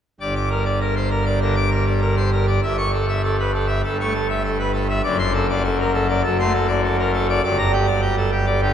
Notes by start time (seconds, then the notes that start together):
0.20 G1 G2 D5
0.35 D6
0.50 A#4
0.66 D5
0.81 A#4
0.96 C5
1.11 A#4
1.26 D5
1.42 D3 A#4
1.56 D6
1.71 A#4
1.87 D5
2.01 A#4
2.17 C5
2.33 A#4
2.47 D5
2.63 G1 G2 E5
2.78 C#6
2.93 A4
3.09 E5
3.24 A4
3.40 B4
3.55 A4
3.68 E5
3.84 G1 G2 A4
4.01 A3 C#6
4.14 A4
4.30 E5
4.44 A4
4.59 B4
4.74 A4
4.89 E5
5.03 F#1 F#2 D5
5.19 C6
5.34 A4
5.49 D5
5.64 A4
5.80 A#4
5.94 A4
6.09 D5
6.24 F#1 F#2 A4
6.39 A3 C6
6.54 A4
6.68 D5
6.84 A4
7.00 A#4
7.14 A4
7.30 D5
7.44 G1 G2 D5
7.58 A#5
7.72 G4
7.87 D5
8.01 G4
8.17 A4
8.32 G4
8.46 D5
8.62 D3 G4